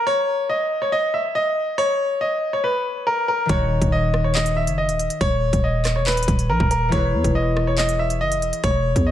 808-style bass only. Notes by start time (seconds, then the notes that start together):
3.49 D#1
3.82 D#1
4.67 F#1
4.89 D#1
5.21 D#1
5.53 D#1
5.96 E1
6.12 D#1
6.28 D#1
6.49 A#1
6.60 D#1
6.92 E1
7.14 E2
7.24 E1
8.21 F#1
8.37 E1
8.64 E1
8.96 E2